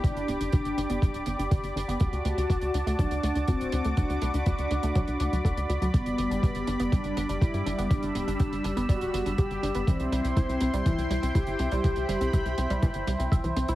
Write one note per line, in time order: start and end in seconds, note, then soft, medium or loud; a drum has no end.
0.00 0.13 G1 medium
0.00 0.13 G3 medium
0.00 1.97 G4 medium
0.00 9.83 D5 medium
0.00 1.97 B5 medium
0.00 7.87 D6 medium
0.00 kick loud
0.04 0.50 D4 loud
0.04 closed hi-hat medium
0.16 0.25 G1 medium
0.16 closed hi-hat soft
0.28 0.37 D1 medium
0.28 0.40 B3 medium
0.28 closed hi-hat medium
0.41 0.50 G1 medium
0.41 0.50 D4 medium
0.41 closed hi-hat medium
0.52 0.62 G1 loud
0.52 1.72 D4 loud
0.52 0.63 G4 medium
0.52 kick loud
0.52 closed hi-hat medium
0.65 0.74 G1 medium
0.65 closed hi-hat soft
0.77 0.87 G1 medium
0.77 0.87 D4 medium
0.77 closed hi-hat medium
0.90 0.99 G1 medium
0.90 0.99 B3 loud
0.90 closed hi-hat medium
1.02 1.11 D1 loud
1.02 1.08 G3 loud
1.02 kick loud
1.02 closed hi-hat medium
1.14 1.24 D1 medium
1.14 closed hi-hat soft
1.26 1.36 G1 medium
1.26 1.38 B3 medium
1.26 closed hi-hat medium
1.39 1.48 G1 medium
1.39 1.49 D4 medium
1.39 closed hi-hat medium
1.51 1.60 G1 medium
1.51 1.61 G4 medium
1.51 kick loud
1.51 closed hi-hat medium
1.64 1.73 G1 medium
1.64 closed hi-hat soft
1.76 1.85 G1 medium
1.76 1.85 D4 medium
1.76 closed hi-hat medium
1.88 1.97 G1 medium
1.88 1.98 B3 loud
1.88 closed hi-hat medium
2.00 2.10 D2 medium
2.00 2.10 F#3 medium
2.00 5.90 F#4 medium
2.00 2.95 F#4 loud
2.00 3.95 A5 medium
2.00 kick loud
2.00 closed hi-hat medium
2.13 2.22 D2 medium
2.13 closed hi-hat soft
2.25 2.34 D2 medium
2.25 2.37 A3 medium
2.25 closed hi-hat medium
2.37 2.46 D2 medium
2.37 2.47 D4 medium
2.37 closed hi-hat medium
2.50 2.59 D2 loud
2.50 2.59 F#4 medium
2.50 kick loud
2.50 closed hi-hat medium
2.61 2.71 D2 medium
2.61 closed hi-hat soft
2.74 2.83 D2 medium
2.74 2.84 D4 medium
2.74 closed hi-hat medium
2.87 2.96 D2 medium
2.87 2.96 A3 loud
2.87 closed hi-hat medium
2.99 3.08 D2 loud
2.99 3.05 F#3 loud
2.99 3.50 D4 loud
2.99 kick loud
2.99 closed hi-hat medium
3.11 3.20 D2 medium
3.11 closed hi-hat soft
3.23 3.33 D2 medium
3.23 3.35 A3 medium
3.23 closed hi-hat medium
3.35 3.45 D2 medium
3.35 3.45 D4 medium
3.35 closed hi-hat medium
3.48 3.57 D2 medium
3.48 3.94 C4 medium
3.48 3.58 F#4 medium
3.48 kick loud
3.48 closed hi-hat medium
3.60 3.69 D1 medium
3.60 closed hi-hat soft
3.72 3.82 D2 medium
3.72 3.82 D4 medium
3.72 closed hi-hat loud
3.84 3.94 D2 medium
3.84 3.95 A3 loud
3.84 closed hi-hat medium
3.97 4.06 D2 loud
3.97 4.07 F#3 medium
3.97 4.43 D4 loud
3.97 9.83 B5 medium
3.97 kick loud
3.97 closed hi-hat medium
4.10 4.19 D2 medium
4.10 closed hi-hat soft
4.22 4.31 C2 medium
4.22 4.34 A3 medium
4.22 closed hi-hat medium
4.34 4.43 D2 medium
4.34 4.44 D4 medium
4.34 closed hi-hat medium
4.46 4.55 D2 loud
4.46 5.65 D4 medium
4.46 4.56 F#4 medium
4.46 kick loud
4.46 closed hi-hat medium
4.58 4.68 D2 medium
4.58 closed hi-hat soft
4.71 4.80 D2 medium
4.71 4.81 D4 medium
4.71 closed hi-hat medium
4.83 4.92 D2 medium
4.83 4.93 A3 loud
4.83 closed hi-hat medium
4.95 5.05 C2 loud
4.95 5.01 F#3 loud
4.95 kick loud
4.95 closed hi-hat medium
5.08 5.17 C2 medium
5.08 closed hi-hat soft
5.20 5.29 D2 medium
5.20 5.26 A3 medium
5.20 closed hi-hat medium
5.32 5.42 D2 medium
5.32 5.42 F#3 medium
5.32 closed hi-hat medium
5.45 5.54 D2 medium
5.45 5.54 A4 medium
5.45 kick loud
5.45 closed hi-hat medium
5.57 5.66 D2 medium
5.57 closed hi-hat soft
5.69 5.78 D2 medium
5.69 5.79 F#4 medium
5.69 closed hi-hat medium
5.82 5.91 D2 medium
5.82 5.91 F#3 loud
5.82 closed hi-hat medium
5.94 6.03 G1 loud
5.94 6.03 G3 medium
5.94 9.84 G3 medium
5.94 6.95 B3 loud
5.94 kick loud
5.94 closed hi-hat medium
6.06 6.15 G1 medium
6.06 closed hi-hat soft
6.18 6.28 G1 medium
6.18 6.30 B3 medium
6.18 closed hi-hat medium
6.31 6.40 G1 medium
6.31 6.40 D4 medium
6.31 closed hi-hat medium
6.43 6.52 G1 medium
6.43 6.53 G4 medium
6.43 kick loud
6.43 closed hi-hat medium
6.55 6.64 G1 medium
6.55 closed hi-hat soft
6.67 6.77 G1 medium
6.67 6.77 D4 medium
6.67 closed hi-hat medium
6.80 6.89 G1 medium
6.80 6.90 B3 loud
6.80 closed hi-hat medium
6.92 7.01 G1 medium
6.92 6.98 G3 loud
6.92 7.43 D4 loud
6.92 kick loud
6.92 closed hi-hat medium
7.04 7.14 G1 medium
7.04 closed hi-hat soft
7.17 7.26 G1 medium
7.17 7.29 B3 medium
7.17 closed hi-hat loud
7.29 7.38 G1 medium
7.29 7.39 D4 medium
7.29 closed hi-hat medium
7.41 7.51 G1 medium
7.41 7.87 E4 loud
7.41 7.51 G4 medium
7.41 kick loud
7.41 closed hi-hat medium
7.54 7.63 G2 medium
7.54 closed hi-hat soft
7.66 7.75 G1 medium
7.66 7.76 D4 medium
7.66 closed hi-hat medium
7.78 7.87 G1 medium
7.78 7.88 B3 loud
7.78 closed hi-hat medium
7.91 8.00 G1 medium
7.91 8.00 G3 medium
7.91 8.92 D4 loud
7.91 9.85 E6 medium
7.91 kick loud
7.91 closed hi-hat medium
8.03 8.12 G1 medium
8.03 closed hi-hat soft
8.15 8.24 D1 medium
8.15 8.27 B3 medium
8.15 closed hi-hat medium
8.28 8.37 G1 medium
8.28 8.37 D4 medium
8.28 closed hi-hat medium
8.40 8.49 G1 loud
8.40 8.49 G4 medium
8.40 kick loud
8.40 closed hi-hat medium
8.52 8.61 G1 medium
8.52 closed hi-hat soft
8.64 8.74 G1 medium
8.64 8.74 D4 medium
8.64 closed hi-hat medium
8.77 8.86 G1 medium
8.77 8.86 B3 loud
8.77 closed hi-hat medium
8.89 8.98 D1 loud
8.89 8.95 G3 loud
8.89 9.40 F#4 loud
8.89 kick loud
8.89 closed hi-hat medium
9.01 9.10 D1 medium
9.01 closed hi-hat soft
9.14 9.23 G1 medium
9.14 9.25 B3 medium
9.14 closed hi-hat loud
9.26 9.35 G1 medium
9.26 9.36 D4 medium
9.26 closed hi-hat medium
9.38 9.47 G1 medium
9.38 9.89 G4 loud
9.38 9.48 G4 medium
9.38 kick loud
9.38 closed hi-hat medium
9.51 9.60 G1 medium
9.51 closed hi-hat soft
9.63 9.72 G1 medium
9.63 9.72 D4 medium
9.63 closed hi-hat medium
9.75 9.84 G1 medium
9.75 9.85 B3 loud
9.75 closed hi-hat medium
9.87 9.96 C2 loud
9.87 9.97 E3 medium
9.87 10.89 C4 loud
9.87 13.75 E4 medium
9.87 13.75 C5 medium
9.87 13.75 G5 medium
9.87 11.82 C6 medium
9.87 kick loud
9.87 closed hi-hat medium
10.00 10.09 C2 medium
10.00 closed hi-hat soft
10.12 10.21 C2 medium
10.12 10.24 G3 medium
10.12 closed hi-hat medium
10.24 10.33 C2 medium
10.24 10.34 C4 medium
10.24 closed hi-hat medium
10.37 10.46 C2 loud
10.37 10.46 E4 medium
10.37 kick loud
10.37 closed hi-hat medium
10.49 10.58 C2 medium
10.49 closed hi-hat soft
10.61 10.70 C2 medium
10.61 10.71 C4 medium
10.61 closed hi-hat loud
10.73 10.83 C2 medium
10.73 10.83 G3 loud
10.73 closed hi-hat medium
10.86 10.95 C2 loud
10.86 10.92 E3 loud
10.86 11.09 E4 loud
10.86 kick loud
10.86 closed hi-hat medium
10.98 11.07 C2 medium
10.98 closed hi-hat soft
11.10 11.19 C2 medium
11.10 11.22 G3 medium
11.10 11.36 E4 medium
11.10 closed hi-hat medium
11.23 11.32 C2 medium
11.23 11.32 C4 medium
11.23 closed hi-hat medium
11.35 11.44 C2 medium
11.35 11.45 E4 medium
11.35 11.59 G4 loud
11.35 kick loud
11.35 closed hi-hat medium
11.47 11.56 G1 medium
11.47 closed hi-hat soft
11.59 11.69 C2 medium
11.59 11.69 C4 medium
11.59 13.28 G4 loud
11.59 closed hi-hat medium
11.72 11.81 C2 medium
11.72 11.81 G3 loud
11.72 closed hi-hat medium
11.84 11.93 C2 loud
11.84 11.94 E3 medium
11.84 13.75 B5 medium
11.84 kick loud
11.84 closed hi-hat medium
11.96 12.06 C2 medium
11.96 closed hi-hat soft
12.09 12.18 G1 medium
12.09 12.20 G3 medium
12.09 closed hi-hat loud
12.21 12.30 C2 medium
12.21 12.31 C4 medium
12.21 closed hi-hat medium
12.33 12.42 C2 loud
12.33 12.43 E4 medium
12.33 kick loud
12.33 closed hi-hat medium
12.46 12.55 C2 medium
12.46 closed hi-hat soft
12.58 12.67 C2 medium
12.58 12.67 C4 medium
12.58 closed hi-hat medium
12.70 12.79 C2 medium
12.70 12.80 G3 loud
12.70 closed hi-hat medium
12.82 12.92 G1 loud
12.82 12.88 E3 loud
12.82 kick loud
12.82 closed hi-hat medium
12.94 13.04 G1 medium
12.94 closed hi-hat soft
13.07 13.16 C2 medium
13.07 13.13 G3 medium
13.07 closed hi-hat loud
13.19 13.28 C2 medium
13.19 13.31 C4 medium
13.19 closed hi-hat medium
13.32 13.41 C2 medium
13.32 13.41 E5 medium
13.32 kick loud
13.32 closed hi-hat medium
13.44 13.53 C2 medium
13.44 13.50 E3 medium
13.44 closed hi-hat soft
13.56 13.65 C2 medium
13.56 13.66 C4 medium
13.56 closed hi-hat medium
13.68 13.75 C2 medium
13.68 13.75 E4 loud
13.68 closed hi-hat medium